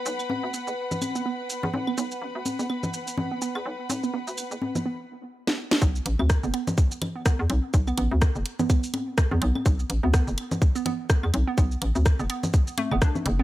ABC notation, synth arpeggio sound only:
X:1
M:4/4
L:1/16
Q:"Swing 16ths" 1/4=125
K:Bm
V:1 name="Synth arpeggio sound"
z3 B, B, z4 B, B, z4 B, | B, z4 B, B, z4 B, B, z3 | z B, B, z4 B, B, z4 B, B, z | B, z4 B, B, z4 B, B, z3 |
z B, B, z4 B, B, z4 B, B, z | z3 B, B, z4 B, B, z4 B, | B, z4 B, B, z3 A, B, D z2 B, |]